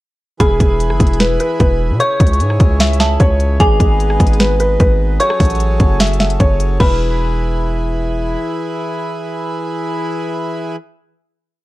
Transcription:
0.40 0.59 E1 loud
0.40 1.98 E3 medium
0.40 1.98 E4 medium
0.40 3.57 G#4 medium
0.40 1.16 G#4 loud
0.40 1.98 B4 medium
0.40 1.16 B5 medium
0.40 kick loud
0.40 closed hi-hat medium
0.60 0.92 E1 loud
0.60 kick loud
0.60 closed hi-hat medium
0.80 closed hi-hat medium
0.90 1.00 F#1 loud
0.90 cross-stick medium
1.00 1.38 E1 loud
1.00 kick loud
1.00 closed hi-hat medium
1.07 closed hi-hat medium
1.13 closed hi-hat soft
1.20 1.39 B4 medium
1.20 snare loud
1.20 closed hi-hat medium
1.40 1.59 B4 medium
1.40 closed hi-hat medium
1.60 1.92 E1 loud
1.60 1.98 B4 medium
1.60 kick loud
1.60 closed hi-hat medium
1.90 2.00 B2 loud
2.00 3.58 C#3 medium
2.00 3.58 C#4 medium
2.00 3.58 E4 medium
2.00 2.76 C#5 loud
2.00 2.96 C#6 loud
2.00 closed hi-hat medium
2.20 2.42 C#2 loud
2.20 kick loud
2.20 closed hi-hat medium
2.27 closed hi-hat medium
2.33 closed hi-hat soft
2.40 2.59 G#2 loud
2.40 closed hi-hat medium
2.50 cross-stick medium
2.60 3.18 C#2 loud
2.60 kick loud
2.60 closed hi-hat medium
2.80 2.99 E5 medium
2.80 snare loud
2.80 closed hi-hat soft
2.87 closed hi-hat medium
2.93 closed hi-hat medium
3.00 3.19 E5 medium
3.00 3.19 A5 medium
3.00 snare medium
3.00 closed hi-hat medium
3.20 3.58 C#2 loud
3.20 3.58 C#5 medium
3.20 kick loud
3.20 closed hi-hat medium
3.40 closed hi-hat medium
3.60 3.79 G#1 loud
3.60 5.18 G#3 medium
3.60 5.18 B3 medium
3.60 5.18 D#4 medium
3.60 4.36 G#4 loud
3.60 4.36 G#5 loud
3.60 kick loud
3.60 closed hi-hat medium
3.80 4.18 G#1 loud
3.80 kick loud
3.80 closed hi-hat medium
4.00 closed hi-hat medium
4.10 cross-stick medium
4.20 4.78 G#1 loud
4.20 kick loud
4.20 closed hi-hat medium
4.27 closed hi-hat medium
4.33 closed hi-hat soft
4.40 4.59 B4 medium
4.40 snare loud
4.40 closed hi-hat medium
4.60 4.79 B4 medium
4.60 closed hi-hat medium
4.80 5.18 G#1 loud
4.80 5.18 B4 medium
4.80 kick loud
4.80 closed hi-hat medium
5.20 6.78 F#3 medium
5.20 6.78 C#4 medium
5.20 6.78 G#4 medium
5.20 6.78 A4 medium
5.20 5.96 C#5 loud
5.20 6.36 C#6 loud
5.20 closed hi-hat medium
5.30 cross-stick loud
5.40 5.78 A1 loud
5.40 kick loud
5.40 closed hi-hat medium
5.40 open hi-hat medium
5.45 closed hi-hat medium
5.50 closed hi-hat medium
5.55 closed hi-hat soft
5.60 closed hi-hat medium
5.80 6.38 F#1 loud
5.80 kick loud
5.80 closed hi-hat medium
6.00 6.18 E5 medium
6.00 snare loud
6.00 closed hi-hat medium
6.07 closed hi-hat medium
6.13 closed hi-hat medium
6.20 6.39 E5 medium
6.20 snare loud
6.20 closed hi-hat soft
6.30 closed hi-hat medium
6.40 6.78 F#1 loud
6.40 6.78 C#5 medium
6.40 kick loud
6.40 closed hi-hat medium
6.60 closed hi-hat medium
6.80 8.36 E1 loud
6.80 10.76 E3 medium
6.80 10.76 E4 medium
6.80 10.76 G#4 medium
6.80 10.76 B4 medium
6.80 7.96 B4 medium
6.80 7.96 B5 medium
6.80 kick loud
6.80 crash medium

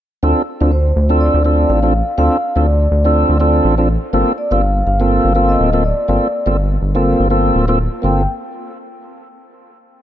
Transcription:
0.23 0.33 D2 loud
0.23 0.42 C4 medium
0.23 0.42 D4 medium
0.23 0.42 F4 medium
0.23 0.42 A4 medium
0.61 0.92 D2 loud
0.61 0.71 C4 medium
0.61 0.71 D4 medium
0.61 0.71 F4 medium
0.61 0.72 A4 medium
0.72 1.22 C5 medium
0.96 1.29 D2 medium
1.09 1.42 C4 medium
1.09 1.42 D4 medium
1.09 1.43 F4 medium
1.09 1.43 A4 loud
1.21 1.71 D5 loud
1.34 1.65 D2 medium
1.45 1.80 C4 medium
1.45 1.80 D4 medium
1.45 1.80 F4 medium
1.45 1.80 A4 medium
1.69 2.02 A1 loud
1.69 2.15 F5 loud
1.83 1.93 C4 loud
1.83 1.93 D4 medium
1.83 1.93 F4 medium
1.83 1.94 A4 loud
2.18 2.29 D2 loud
2.18 2.37 C4 medium
2.18 2.37 D4 medium
2.18 2.37 F4 medium
2.18 2.38 A4 loud
2.18 2.57 F5 loud
2.56 2.87 D2 loud
2.56 2.66 C4 medium
2.56 2.66 D4 medium
2.56 2.67 F4 medium
2.56 2.67 A4 medium
2.56 3.50 D5 medium
2.91 3.24 D2 medium
3.04 3.37 C4 medium
3.04 3.38 D4 medium
3.04 3.38 F4 medium
3.04 3.38 A4 loud
3.29 3.60 D2 medium
3.40 3.75 C4 medium
3.40 3.75 D4 medium
3.40 3.75 F4 medium
3.40 3.75 A4 medium
3.65 3.97 A1 loud
3.78 3.88 C4 loud
3.78 3.88 D4 medium
3.78 3.89 F4 medium
3.78 3.89 A4 loud
4.13 4.24 G1 medium
4.13 4.32 A#3 medium
4.13 4.32 C4 medium
4.13 4.33 F4 medium
4.13 4.33 A4 loud
4.38 4.52 D5 medium
4.51 4.82 G1 loud
4.51 4.61 A#3 medium
4.51 4.62 C4 medium
4.51 4.62 F4 medium
4.51 4.62 A4 medium
4.51 4.86 F5 loud
4.87 5.19 G1 medium
4.87 5.51 F5 loud
5.00 5.33 A#3 loud
5.00 5.33 C4 medium
5.00 5.33 F4 medium
5.00 5.33 A4 loud
5.25 5.56 G1 medium
5.35 5.70 A#3 medium
5.35 5.70 C4 medium
5.35 5.70 F4 medium
5.35 5.70 A4 loud
5.49 5.82 D#5 loud
5.60 5.93 D1 loud
5.73 5.83 A#3 loud
5.73 5.83 C4 medium
5.73 5.84 F4 medium
5.73 5.84 A4 loud
5.84 6.53 D5 medium
6.08 6.19 G1 loud
6.08 6.27 A#3 medium
6.08 6.27 C4 medium
6.08 6.28 F4 medium
6.08 6.28 A4 loud
6.46 6.78 G1 loud
6.46 6.56 A#3 medium
6.46 6.57 C4 medium
6.46 6.57 F4 medium
6.46 6.57 A4 medium
6.82 7.14 G1 medium
6.95 7.28 A#3 medium
6.95 7.28 C4 medium
6.95 7.28 F4 medium
6.95 7.28 A4 loud
7.20 7.51 G1 medium
7.30 7.65 A#3 medium
7.30 7.65 C4 medium
7.30 7.65 F4 medium
7.30 7.66 A4 medium
7.55 7.88 D1 loud
7.68 7.78 A#3 loud
7.68 7.79 C4 medium
7.68 7.79 F4 medium
7.68 7.79 A4 loud
8.02 8.26 G1 loud
8.02 8.21 A#3 medium
8.02 8.22 C4 medium
8.02 8.23 F4 medium
8.02 8.23 A4 medium
8.02 8.27 G5 medium

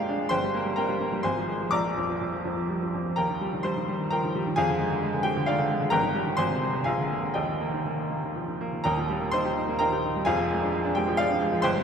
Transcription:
0.00 0.27 F2 medium
0.00 0.19 G#3 medium
0.00 0.33 A#3 soft
0.00 0.09 D4 medium
0.00 0.27 F4 medium
0.00 0.34 G4 medium
0.00 0.33 G#4 medium
0.00 0.27 D5 medium
0.00 0.33 F5 medium
0.00 0.31 G5 medium
0.00 0.33 G#5 medium
0.09 0.27 D4 medium
0.19 0.31 G#3 medium
0.29 1.21 G1 medium
0.29 0.73 C5 medium
0.29 0.73 G5 medium
0.29 0.76 C6 loud
0.43 0.61 G3 medium
0.54 0.72 A#3 medium
0.65 0.84 G3 medium
0.76 0.96 A#3 medium
0.76 1.21 A#4 medium
0.76 1.21 G5 medium
0.76 1.23 A#5 medium
0.89 1.07 G3 medium
1.01 1.19 A#3 medium
1.12 1.24 G3 medium
1.23 1.71 G#1 medium
1.23 1.69 C5 medium
1.23 1.69 G#5 medium
1.23 1.72 C6 medium
1.37 1.55 F3 medium
1.48 1.68 G#3 medium
1.61 1.73 F3 soft
1.71 3.14 A#1 medium
1.71 2.90 D5 medium
1.71 2.90 A#5 medium
1.71 2.93 D6 loud
1.85 2.04 F3 medium
1.97 2.16 F2 medium
2.09 2.28 F3 medium
2.21 2.40 F2 medium
2.33 2.52 F3 soft
2.45 2.64 F2 medium
2.57 2.76 F3 soft
2.70 2.82 G3 soft
2.82 3.01 F3 soft
2.94 3.13 F2 soft
3.06 3.18 F3 soft
3.16 4.53 D#2 medium
3.16 3.61 A#4 medium
3.16 3.61 G5 medium
3.16 3.64 A#5 medium
3.29 3.48 D#3 soft
3.41 3.60 G3 medium
3.54 3.72 D#3 soft
3.63 3.83 G3 medium
3.63 4.08 C5 medium
3.63 4.10 C6 medium
3.77 3.95 D#3 medium
3.88 4.07 G3 medium
4.00 4.18 D#3 medium
4.11 4.23 F3 medium
4.11 4.54 A#4 medium
4.11 4.54 G5 medium
4.11 4.56 A#5 medium
4.24 4.42 D#3 medium
4.35 4.53 G3 medium
4.47 4.57 D#3 medium
4.56 5.89 F2 medium
4.56 5.21 G#4 medium
4.56 5.21 F5 medium
4.56 5.24 G#5 loud
4.69 4.86 D3 medium
4.79 4.97 G#3 medium
4.91 5.09 D3 medium
5.02 5.20 G#3 medium
5.14 5.32 D3 medium
5.23 5.43 G#3 medium
5.23 5.46 G4 medium
5.23 5.47 G5 loud
5.37 5.55 D3 medium
5.46 5.59 D#3 medium
5.46 5.90 F4 medium
5.46 5.90 D5 medium
5.46 5.92 F5 medium
5.59 5.77 D3 medium
5.70 5.88 G#3 medium
5.81 5.93 D3 medium
5.90 6.37 G1 medium
5.90 6.35 A#4 medium
5.90 6.35 G5 medium
5.90 6.38 A#5 loud
6.03 6.22 D#3 medium
6.15 6.34 G3 medium
6.26 6.38 D#3 medium
6.37 6.84 G#1 medium
6.37 6.82 C5 medium
6.37 6.82 G#5 medium
6.37 6.85 C6 loud
6.50 6.69 C3 medium
6.62 6.81 C4 medium
6.74 6.86 C3 medium
6.84 7.34 A#1 medium
6.84 7.31 G#4 medium
6.84 7.31 F5 medium
6.84 7.34 G#5 medium
6.98 7.18 D3 soft
7.10 7.30 A#3 medium
7.22 7.35 D3 soft
7.34 8.82 D#2 medium
7.34 8.57 G4 medium
7.34 8.56 D#5 medium
7.34 8.60 G5 medium
7.48 7.68 D#3 soft
7.61 7.81 A#3 medium
7.73 7.93 D#3 medium
7.86 8.06 A#3 medium
7.99 8.19 D#3 soft
8.10 8.31 A#3 soft
8.24 8.44 D#3 medium
8.35 8.48 F3 soft
8.48 8.68 D#3 soft
8.61 8.81 A#3 medium
8.73 8.85 D#3 soft
8.84 10.22 D#1 medium
8.84 10.23 D#2 medium
8.84 9.30 A#4 medium
8.84 9.30 G5 medium
8.84 9.33 A#5 loud
8.97 9.17 A#2 medium
9.10 9.29 G3 medium
9.22 9.41 A#3 medium
9.31 9.52 D#4 medium
9.31 9.77 C5 medium
9.31 9.79 C6 loud
9.45 9.64 G4 medium
9.57 9.76 D#4 medium
9.69 9.87 A#3 medium
9.79 9.99 D#4 medium
9.79 10.23 A#4 medium
9.79 10.23 G5 medium
9.79 10.26 A#5 medium
9.93 10.11 G4 medium
10.05 10.23 D#4 medium
10.16 10.27 G3 medium
10.25 11.58 F1 medium
10.25 11.59 F2 medium
10.25 10.91 G#4 medium
10.25 10.91 F5 medium
10.25 10.94 G#5 loud
10.39 10.57 F3 medium
10.51 10.69 G#3 medium
10.62 10.80 D4 medium
10.72 10.90 G#3 medium
10.85 11.02 D4 medium
10.95 11.14 G#3 medium
10.95 11.16 G4 medium
10.95 11.17 G5 medium
11.08 11.25 F3 medium
11.17 11.36 G#3 medium
11.17 11.60 F4 medium
11.17 11.60 D5 medium
11.17 11.63 F5 loud
11.30 11.47 D4 medium
11.42 11.59 G#3 medium
11.53 11.64 F3 medium
11.62 11.83 G1 loud
11.62 11.83 C5 medium
11.62 11.83 G5 medium
11.62 11.83 C6 loud
11.76 11.83 G2 medium

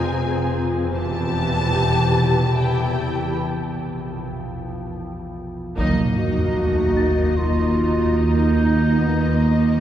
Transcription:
0.00 0.95 F1 soft
0.00 0.94 F2 soft
0.00 0.98 F2 medium
0.00 0.94 C4 soft
0.00 0.98 F4 soft
0.00 0.94 G#4 soft
0.00 0.95 C5 soft
0.00 0.99 F5 medium
0.00 1.75 F5 soft
0.00 0.59 G#5 medium
0.00 1.74 G6 soft
0.97 3.34 E1 soft
0.97 3.34 E2 soft
0.97 3.39 E2 medium
0.97 2.54 E3 soft
0.97 2.54 G4 soft
0.97 3.38 G4 soft
0.97 3.39 B4 soft
0.97 3.39 G5 soft
0.97 2.54 A5 medium
2.18 3.34 A6 soft
2.58 3.36 E4 soft
2.58 3.36 G4 soft
2.58 3.38 G5 soft
3.38 5.78 A#1 soft
5.76 9.80 D#2 soft
5.76 9.80 D#2 medium
5.76 6.15 F#3 soft
5.76 9.80 A#3 soft
5.76 9.80 D#4 medium
5.76 9.80 D#4 soft
5.76 9.80 D#5 medium
5.76 9.80 D#5 soft
5.76 9.80 A#5 medium
5.76 taiko soft
5.76 sub drop soft
6.17 6.58 A#3 soft
6.17 7.38 F#4 soft
6.58 6.98 A3 soft
6.97 8.98 A#3 soft
6.97 9.34 A6 soft
7.37 8.17 F4 soft
8.18 9.80 D#4 medium
8.98 9.38 B3 soft
9.38 9.77 A#3 soft

